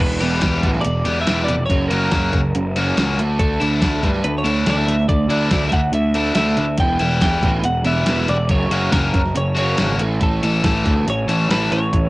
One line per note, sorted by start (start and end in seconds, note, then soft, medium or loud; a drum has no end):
0.00 0.18 E1 medium
0.00 0.20 E2 medium
0.00 0.20 B2 medium
0.00 0.20 E3 medium
0.00 0.81 B4 medium
0.20 0.40 E1 medium
0.20 0.40 E2 medium
0.20 0.40 B2 medium
0.20 0.40 E3 medium
0.20 0.40 G3 medium
0.20 0.41 B3 medium
0.20 0.41 G4 medium
0.20 closed hi-hat medium
0.41 0.61 E1 medium
0.41 0.61 E2 medium
0.41 0.62 B2 medium
0.41 0.69 E3 medium
0.41 0.69 G3 medium
0.41 0.70 B3 medium
0.41 0.70 G4 medium
0.41 kick medium
0.41 snare loud
0.41 closed hi-hat medium
0.62 0.82 A1 medium
0.62 0.82 E2 medium
0.62 0.82 B2 medium
0.62 0.83 E3 loud
0.62 kick medium
0.62 closed hi-hat medium
0.75 snare soft
0.81 1.03 E2 medium
0.81 1.03 B2 medium
0.81 1.21 D5 medium
0.81 closed hi-hat medium
0.86 1.04 E1 medium
1.05 1.25 E1 medium
1.05 1.24 E2 medium
1.05 1.24 B2 medium
1.05 1.25 E3 medium
1.05 1.26 G3 medium
1.05 1.26 B3 medium
1.05 1.26 G4 medium
1.05 closed hi-hat medium
1.21 1.44 E5 medium
1.26 1.46 E1 medium
1.26 1.46 E2 medium
1.26 1.47 B2 medium
1.26 1.54 E3 medium
1.26 1.47 E3 medium
1.26 1.54 G3 medium
1.26 1.55 B3 medium
1.26 1.55 G4 medium
1.26 snare loud
1.26 closed hi-hat medium
1.44 1.65 D5 medium
1.49 1.67 F1 medium
1.49 1.67 E2 medium
1.49 1.67 B2 medium
1.49 closed hi-hat medium
1.66 1.88 F#1 medium
1.66 1.89 C#5 medium
1.70 1.90 F#2 medium
1.70 1.90 C#3 medium
1.70 1.90 F#3 medium
1.70 kick medium
1.70 closed hi-hat medium
1.88 2.10 F#1 medium
1.88 2.11 F#2 medium
1.88 2.11 C#3 medium
1.88 2.11 F#3 medium
1.88 2.11 A#3 medium
1.88 2.12 C#4 medium
1.88 2.12 F#4 medium
1.88 2.70 A#4 medium
1.88 closed hi-hat medium
1.92 2.11 F#3 medium
2.12 2.30 F#1 medium
2.12 2.31 F#2 medium
2.12 2.31 C#3 medium
2.12 2.40 F#3 medium
2.12 2.40 A#3 medium
2.12 2.40 C#4 medium
2.12 2.40 F#4 medium
2.12 kick medium
2.12 snare loud
2.12 closed hi-hat medium
2.33 2.52 F#1 medium
2.33 2.52 F#2 medium
2.33 2.52 C#3 medium
2.33 kick medium
2.33 closed hi-hat medium
2.55 2.92 F#1 medium
2.55 2.74 F#2 medium
2.55 2.74 C#3 medium
2.55 closed hi-hat medium
2.76 2.96 F#2 medium
2.76 2.97 C#3 medium
2.76 2.97 F#3 medium
2.76 2.97 F#3 loud
2.76 2.97 A#3 medium
2.76 2.97 C#4 medium
2.76 2.97 F#4 medium
2.76 closed hi-hat medium
2.98 3.16 C#2 medium
2.98 3.17 F#2 medium
2.98 3.17 C#3 medium
2.98 3.18 F#3 medium
2.98 3.18 A#3 medium
2.98 3.19 C#4 medium
2.98 3.19 F#4 medium
2.98 snare loud
2.98 closed hi-hat medium
3.19 3.37 D2 medium
3.19 3.38 D3 medium
3.19 3.39 A3 medium
3.19 3.39 D4 medium
3.19 closed hi-hat medium
3.39 3.58 D2 medium
3.39 3.60 D3 medium
3.39 3.60 A3 medium
3.39 3.60 D4 loud
3.39 3.99 A4 medium
3.39 kick loud
3.39 closed hi-hat medium
3.60 3.80 D2 medium
3.60 3.80 D3 medium
3.60 3.81 A3 medium
3.60 3.80 A3 medium
3.60 3.81 D4 medium
3.60 3.81 E4 medium
3.60 closed hi-hat medium
3.81 4.01 D2 medium
3.81 4.09 D3 medium
3.81 4.01 D3 medium
3.81 4.09 A3 medium
3.81 4.01 A3 medium
3.81 4.09 D4 medium
3.81 4.09 E4 medium
3.81 kick medium
3.81 snare loud
3.81 closed hi-hat medium
4.03 4.22 G2 medium
4.03 4.23 D3 medium
4.03 4.23 A3 medium
4.03 4.24 D4 medium
4.03 kick medium
4.03 closed hi-hat medium
4.14 snare soft
4.24 4.43 D2 medium
4.24 4.43 D3 medium
4.24 4.43 A3 medium
4.24 4.35 B4 medium
4.24 closed hi-hat medium
4.38 4.69 C#5 medium
4.44 4.64 D2 medium
4.44 4.64 D3 medium
4.44 4.65 D3 medium
4.44 4.66 A3 medium
4.44 4.65 A3 medium
4.44 4.66 D4 medium
4.44 4.66 E4 medium
4.44 closed hi-hat medium
4.66 4.85 D2 medium
4.66 4.94 D3 medium
4.66 4.86 D3 medium
4.66 4.86 A3 medium
4.66 4.94 A3 medium
4.66 4.94 D4 medium
4.66 4.87 D4 medium
4.66 4.95 E4 medium
4.66 4.77 D5 medium
4.66 snare loud
4.66 closed hi-hat medium
4.77 5.08 E5 medium
4.87 5.06 D2 medium
4.87 5.07 D3 medium
4.87 5.07 A3 medium
4.87 closed hi-hat medium
5.08 5.27 D2 medium
5.08 5.28 D3 medium
5.08 5.28 A3 medium
5.08 5.63 D5 medium
5.08 kick medium
5.08 closed hi-hat medium
5.28 5.48 D2 medium
5.28 5.49 D3 medium
5.28 5.51 D3 medium
5.28 5.51 A3 medium
5.28 5.50 A3 medium
5.28 5.51 D4 medium
5.28 5.50 D4 medium
5.28 5.51 E4 medium
5.28 closed hi-hat medium
5.51 5.70 D2 medium
5.51 5.70 D3 medium
5.51 5.79 D3 medium
5.51 5.70 A3 medium
5.51 5.79 A3 medium
5.51 5.80 D4 medium
5.51 5.80 E4 medium
5.51 kick medium
5.51 snare loud
5.51 closed hi-hat medium
5.69 5.91 D2 medium
5.69 5.73 E5 medium
5.69 kick medium
5.69 closed hi-hat medium
5.73 5.92 D3 medium
5.73 5.92 A3 medium
5.73 5.94 F#5 loud
5.92 6.30 D2 medium
5.92 6.13 D3 medium
5.92 6.13 A3 medium
5.92 6.34 E5 medium
5.92 closed hi-hat medium
6.14 6.35 D3 medium
6.14 6.35 A3 medium
6.14 6.35 D4 medium
6.14 6.36 D4 medium
6.14 6.36 E4 medium
6.14 closed hi-hat medium
6.35 6.55 D2 medium
6.35 6.64 D3 medium
6.35 6.56 D3 medium
6.35 6.64 A3 medium
6.35 6.56 A3 medium
6.35 6.65 D4 medium
6.35 6.64 E4 medium
6.35 6.76 E5 medium
6.35 snare loud
6.35 closed hi-hat medium
6.57 6.77 D2 medium
6.57 6.76 D3 medium
6.57 6.77 A3 medium
6.57 closed hi-hat medium
6.77 6.97 E1 medium
6.77 6.99 E2 medium
6.77 7.00 B2 medium
6.77 7.00 E3 medium
6.77 7.21 G5 loud
6.77 kick medium
6.77 closed hi-hat medium
6.99 7.19 E1 medium
6.99 7.19 E2 medium
6.99 7.20 B2 medium
6.99 7.20 E3 medium
6.99 7.21 G3 medium
6.99 7.21 B3 medium
6.99 7.21 E4 medium
6.99 closed hi-hat soft
7.21 7.41 E1 medium
7.21 7.41 E2 medium
7.21 7.41 B2 medium
7.21 7.49 E3 medium
7.21 7.50 G3 medium
7.21 7.50 B3 medium
7.21 7.50 E4 medium
7.21 7.65 G5 medium
7.21 kick medium
7.21 snare loud
7.21 closed hi-hat medium
7.42 7.62 A1 medium
7.42 7.62 E2 medium
7.42 7.63 B2 medium
7.42 7.64 E3 medium
7.42 kick medium
7.42 closed hi-hat soft
7.63 7.82 E1 medium
7.63 7.83 E2 medium
7.63 7.83 B2 medium
7.63 7.85 F#5 medium
7.63 closed hi-hat medium
7.84 8.04 E1 medium
7.84 8.04 E2 medium
7.84 8.04 B2 medium
7.84 8.06 E3 medium
7.84 8.06 G3 medium
7.84 8.07 B3 medium
7.84 8.07 E4 medium
7.84 8.26 E5 medium
7.84 closed hi-hat medium
8.06 8.26 E1 medium
8.06 8.27 E2 medium
8.06 8.27 B2 medium
8.06 8.27 E3 medium
8.06 8.35 E3 medium
8.06 8.35 G3 medium
8.06 8.35 B3 medium
8.06 8.36 E4 medium
8.06 snare loud
8.06 closed hi-hat medium
8.28 8.47 E1 medium
8.28 8.48 E2 medium
8.28 8.48 B2 medium
8.28 8.51 D5 medium
8.28 closed hi-hat medium
8.49 8.69 F#1 medium
8.49 8.70 F#2 medium
8.49 8.70 C#3 medium
8.49 8.70 F#3 medium
8.49 8.92 C#5 medium
8.49 kick medium
8.49 closed hi-hat medium
8.70 8.89 F#1 medium
8.70 8.91 F#2 medium
8.70 8.92 C#3 medium
8.70 8.92 F#3 medium
8.70 8.90 F#3 medium
8.70 8.91 A#3 medium
8.70 8.91 C#4 medium
8.70 8.92 F#4 medium
8.70 closed hi-hat medium
8.91 9.11 F#1 medium
8.91 9.12 F#2 medium
8.91 9.13 C#3 medium
8.91 9.20 F#3 medium
8.91 9.20 A#3 medium
8.91 9.20 C#4 medium
8.91 9.21 F#4 medium
8.91 9.37 A#4 medium
8.91 kick medium
8.91 snare loud
8.91 closed hi-hat medium
9.14 9.33 F#1 medium
9.14 9.34 F#2 medium
9.14 9.34 C#3 medium
9.14 kick medium
9.14 closed hi-hat medium
9.25 snare soft
9.35 9.73 F#1 medium
9.35 9.54 F#2 medium
9.35 9.54 C#3 medium
9.35 9.57 C#5 medium
9.35 closed hi-hat medium
9.55 9.77 F#2 medium
9.55 9.77 C#3 medium
9.55 9.77 F#3 medium
9.55 9.77 A#3 medium
9.55 9.78 C#4 medium
9.55 9.77 F#4 medium
9.55 9.98 C#5 medium
9.55 closed hi-hat medium
9.78 9.98 G#1 medium
9.78 9.98 F#2 medium
9.78 9.98 C#3 medium
9.78 10.00 F#3 medium
9.78 10.00 A#3 medium
9.78 10.00 C#4 medium
9.78 10.00 F#4 medium
9.78 snare loud
9.78 closed hi-hat medium
9.99 10.19 A1 medium
9.99 10.20 A2 medium
9.99 10.20 E3 medium
9.99 10.20 A3 medium
9.99 closed hi-hat medium
10.21 10.40 A1 medium
10.21 10.41 A2 medium
10.21 10.41 E3 medium
10.21 10.42 A3 medium
10.21 11.04 A4 medium
10.21 kick medium
10.21 closed hi-hat medium
10.42 10.62 A1 medium
10.42 10.62 A2 medium
10.42 10.62 E3 medium
10.42 10.63 E3 medium
10.42 10.64 A3 medium
10.42 10.64 C#4 medium
10.42 10.64 A4 medium
10.42 closed hi-hat medium
10.63 10.83 A1 medium
10.63 10.83 A2 medium
10.63 10.83 E3 medium
10.63 10.92 E3 medium
10.63 10.92 A3 medium
10.63 10.93 C#4 medium
10.63 10.93 A4 medium
10.63 kick medium
10.63 snare loud
10.63 closed hi-hat medium
10.84 11.05 D2 medium
10.84 11.05 A2 medium
10.84 11.06 E3 medium
10.84 11.06 A3 medium
10.84 kick medium
10.84 closed hi-hat medium
11.07 11.26 A1 medium
11.07 11.27 A2 medium
11.07 11.27 E3 medium
11.07 11.51 C#5 medium
11.07 closed hi-hat medium
11.27 11.47 A1 medium
11.27 11.48 A2 medium
11.27 11.48 E3 medium
11.27 11.49 E3 medium
11.27 11.49 A3 medium
11.27 11.50 C#4 medium
11.27 11.50 A4 medium
11.27 closed hi-hat medium
11.50 11.69 A1 medium
11.50 11.71 A2 medium
11.50 11.78 E3 medium
11.50 11.71 E3 medium
11.50 11.78 A3 medium
11.50 11.71 A3 medium
11.50 11.79 C#4 medium
11.50 11.79 A4 medium
11.50 11.71 B4 medium
11.50 snare loud
11.50 closed hi-hat medium
11.72 11.91 A1 medium
11.72 11.91 A2 medium
11.72 11.91 E3 medium
11.72 12.09 C#5 medium
11.72 closed hi-hat medium
11.93 12.09 A1 medium
11.93 12.09 A2 medium
11.93 12.09 E3 medium
11.93 kick medium
11.93 closed hi-hat medium